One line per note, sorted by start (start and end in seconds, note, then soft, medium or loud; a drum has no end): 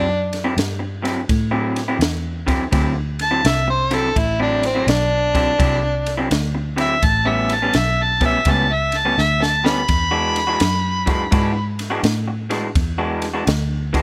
0.00 0.56 F#2 medium
0.00 0.55 D4 loud
0.09 muted clean electric guitar stroke medium
0.33 snare soft
0.33 ride medium
0.44 0.55 D3 medium
0.44 0.55 F#3 medium
0.44 0.55 C4 loud
0.44 0.56 E4 medium
0.56 1.27 G2 medium
0.56 muted clean electric guitar stroke soft
0.56 snare loud
0.56 ride medium
0.79 muted clean electric guitar stroke medium
1.02 1.20 D3 medium
1.02 1.20 F#3 medium
1.02 1.20 C4 medium
1.02 1.20 E4 medium
1.02 snare soft
1.02 ride medium
1.29 1.98 A2 medium
1.29 kick loud
1.29 snare soft
1.29 ride medium
1.51 1.80 D3 medium
1.51 1.80 F#3 medium
1.51 1.79 C4 medium
1.51 1.79 E4 medium
1.76 snare soft
1.76 ride medium
1.88 1.98 D3 medium
1.88 1.99 F#3 medium
1.88 1.99 C4 medium
1.88 1.99 E4 loud
1.99 2.70 E2 medium
1.99 muted clean electric guitar stroke soft
1.99 snare loud
1.99 ride medium
2.47 2.63 D3 medium
2.47 2.64 F#3 medium
2.47 2.64 C4 medium
2.47 2.64 E4 medium
2.47 kick medium
2.47 snare soft
2.47 ride medium
2.71 3.42 D2 medium
2.71 2.95 D3 medium
2.71 2.95 F#3 medium
2.71 2.95 C4 medium
2.71 2.94 E4 medium
2.71 kick loud
2.71 snare soft
2.71 ride medium
2.96 muted clean electric guitar stroke medium
3.19 3.48 A5 loud
3.19 snare soft
3.19 ride medium
3.31 3.42 D3 medium
3.31 3.43 F#3 medium
3.31 3.43 C4 medium
3.31 3.43 E4 loud
3.44 4.14 C2 medium
3.44 3.69 E5 loud
3.44 muted clean electric guitar stroke soft
3.44 snare loud
3.44 ride medium
3.68 3.96 C5 medium
3.68 muted clean electric guitar stroke medium
3.91 4.07 D3 medium
3.91 4.08 F#3 medium
3.91 4.08 C4 medium
3.91 4.08 E4 loud
3.91 4.20 A4 medium
3.91 snare soft
3.91 ride medium
4.16 4.86 A1 medium
4.16 4.41 E4 loud
4.16 kick loud
4.16 snare soft
4.16 ride medium
4.40 4.67 D3 medium
4.40 4.67 F#3 medium
4.40 4.67 C4 medium
4.40 4.64 D4 medium
4.40 4.67 E4 loud
4.63 4.89 C4 medium
4.63 snare soft
4.63 ride medium
4.75 4.88 D3 medium
4.75 4.88 F#3 medium
4.75 4.88 C4 medium
4.75 4.88 E4 medium
4.87 5.57 B1 medium
4.87 6.27 D4 loud
4.87 muted clean electric guitar stroke medium
4.87 snare loud
4.87 ride medium
5.34 5.51 D3 medium
5.34 5.51 F#3 medium
5.34 5.51 C4 medium
5.34 5.52 E4 medium
5.34 kick medium
5.34 snare soft
5.34 ride medium
5.58 6.29 C2 medium
5.58 5.82 D3 medium
5.58 5.82 F#3 medium
5.58 5.81 C4 medium
5.58 5.81 E4 loud
5.58 kick loud
5.58 snare soft
5.58 ride medium
5.82 muted clean electric guitar stroke medium
6.06 snare soft
6.06 ride medium
6.17 6.29 D3 medium
6.17 6.30 F#3 medium
6.17 6.30 C4 medium
6.17 6.30 E4 medium
6.30 7.01 D2 medium
6.30 muted clean electric guitar stroke soft
6.30 snare loud
6.30 ride medium
6.55 muted clean electric guitar stroke soft
6.76 6.93 D3 medium
6.76 6.94 F#3 medium
6.76 6.94 C4 medium
6.76 6.94 E4 loud
6.76 snare soft
6.76 ride medium
6.81 7.06 E5 loud
7.03 7.72 A1 medium
7.03 7.30 A5 loud
7.03 kick loud
7.03 snare soft
7.03 ride medium
7.25 7.54 A2 medium
7.25 7.54 G3 medium
7.25 7.53 B3 medium
7.25 7.53 C#4 medium
7.25 7.56 E5 loud
7.49 snare soft
7.49 ride medium
7.55 7.78 A5 medium
7.62 7.74 A2 medium
7.62 7.74 G3 medium
7.62 7.74 B3 medium
7.62 7.75 C#4 loud
7.74 8.44 B1 medium
7.74 8.04 E5 loud
7.74 muted clean electric guitar stroke soft
7.74 snare loud
7.74 ride medium
8.03 8.24 A5 loud
8.21 8.37 A2 medium
8.21 8.38 G3 medium
8.21 8.38 B3 medium
8.21 8.38 C#4 medium
8.21 kick medium
8.21 snare soft
8.21 ride medium
8.25 8.53 E5 loud
8.45 9.15 C#2 medium
8.45 8.70 A2 medium
8.45 8.69 G3 medium
8.45 8.69 B3 medium
8.45 8.68 C#4 medium
8.45 kick loud
8.45 snare soft
8.45 ride medium
8.51 8.74 A5 medium
8.70 8.99 E5 medium
8.70 muted clean electric guitar stroke soft
8.92 snare soft
8.92 ride medium
8.97 9.22 A5 medium
9.05 9.16 A2 medium
9.05 9.16 G3 medium
9.05 9.17 B3 medium
9.05 9.17 C#4 medium
9.17 9.87 D2 medium
9.17 9.45 E5 loud
9.17 muted clean electric guitar stroke medium
9.17 snare medium
9.40 9.68 A5 medium
9.40 muted clean electric guitar stroke medium
9.40 snare medium
9.64 9.80 A2 medium
9.64 9.81 G3 medium
9.64 9.81 B3 medium
9.64 9.81 C#4 loud
9.64 11.77 B5 loud
9.64 snare loud
9.88 10.59 E2 medium
9.88 kick loud
9.88 snare soft
9.88 ride medium
10.11 10.40 E3 medium
10.11 10.40 G#3 medium
10.11 10.39 D4 medium
10.11 10.39 F#4 medium
10.36 snare soft
10.36 ride medium
10.47 10.59 E3 medium
10.47 10.60 G#3 medium
10.47 10.60 D4 medium
10.47 10.60 F#4 loud
10.60 11.30 F#2 medium
10.60 muted clean electric guitar stroke soft
10.60 snare loud
10.60 ride medium
11.06 11.23 E3 medium
11.06 11.24 G#3 medium
11.06 11.24 D4 medium
11.06 11.24 F#4 medium
11.06 kick medium
11.06 snare soft
11.06 ride medium
11.31 12.02 G#2 medium
11.31 11.55 E3 medium
11.31 11.54 G#3 medium
11.31 11.54 D4 loud
11.31 11.53 F#4 medium
11.31 kick loud
11.31 snare soft
11.31 ride medium
11.54 muted clean electric guitar stroke medium
11.79 snare soft
11.79 ride medium
11.90 12.02 E3 medium
11.90 12.03 G#3 medium
11.90 12.03 D4 loud
11.90 12.03 F#4 loud
12.03 12.73 A2 medium
12.03 muted clean electric guitar stroke soft
12.03 snare loud
12.03 ride medium
12.28 muted clean electric guitar stroke medium
12.50 12.67 E3 medium
12.50 12.67 G#3 medium
12.50 12.67 D4 loud
12.50 12.67 F#4 medium
12.50 snare soft
12.50 ride medium
12.75 13.45 E2 medium
12.75 kick loud
12.75 snare soft
12.75 ride medium
12.98 13.26 E3 medium
12.98 13.26 G#3 medium
12.98 13.26 D4 medium
12.98 13.26 F#4 medium
13.22 snare soft
13.22 ride medium
13.34 13.45 E3 medium
13.34 13.45 G#3 medium
13.34 13.46 D4 medium
13.34 13.46 F#4 loud
13.46 14.02 D2 medium
13.46 muted clean electric guitar stroke soft
13.46 snare loud
13.46 ride medium
13.93 14.02 E3 medium
13.93 14.02 G#3 medium
13.93 14.02 D4 medium
13.93 14.02 F#4 medium
13.93 kick medium
13.93 snare soft
13.93 ride medium